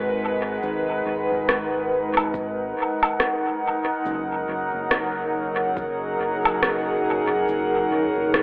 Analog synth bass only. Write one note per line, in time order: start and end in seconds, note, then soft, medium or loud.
0.00 0.59 G#1 medium
0.63 1.02 G#1 loud
1.06 1.28 G#1 medium
1.31 2.74 G#1 loud
4.05 4.44 F#1 loud
4.48 4.71 F#1 medium
4.74 6.16 F#1 loud
6.19 7.45 F#1 medium
7.48 7.87 F#1 loud
7.91 8.14 F#1 medium
8.17 8.43 F#1 loud